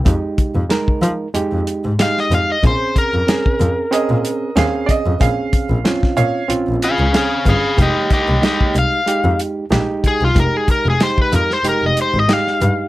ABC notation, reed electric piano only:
X:1
M:4/4
L:1/8
Q:"Swing 16ths" 1/4=93
K:Fm
V:1 name="Reed electric piano"
[A,EG]2 [A,EB]2 [A,EG]2 [A,EG]2 | [CDA]2 [CDA]2 [CDA]2 [CDA]2 | [CDA]2 [CDF]2 [CDF]2 [CDA]2 | [A,EG]2 [A,EG]2 [A,EG]2 [A,EG]2 |
[A,EG]2 [A,EG]2 [A,EG]2 [A,EG]2 |]